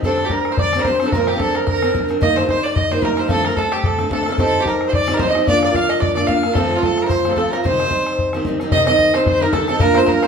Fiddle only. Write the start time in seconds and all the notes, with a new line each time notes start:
0.05 A4
0.26 G4
0.33 A#4
0.55 C5
0.60 D5
0.82 A#4
0.87 C5
1.08 A4
1.14 A#4
1.29 G4
1.41 A4
1.56 A#4
1.66 A#4
2.22 D#5
2.36 C5
2.48 C5
2.63 D5
2.75 D#5
2.92 C5
3.04 A#4
3.19 C5
3.29 A4
3.46 A#4
3.57 A4
3.72 G4
3.84 A4
4.12 A4
4.40 A4
4.62 G4
4.68 A#4
4.88 C5
4.93 D5
5.13 A#4
5.20 C5
5.28 D#5
5.47 D5
5.64 D5
5.75 F5
5.90 D#5
6.00 D5
6.15 D5
6.27 F5
6.54 A4
6.75 F4
6.82 A4
7.02 A#4
7.07 C5
7.30 A4
7.34 A4
7.51 A#4
7.63 C5
8.72 D#5
8.86 D#5
9.16 C5
9.26 C5
9.42 A#4
9.53 A4
9.69 A4
9.81 A#4
9.97 C5
10.09 A#4
10.23 C5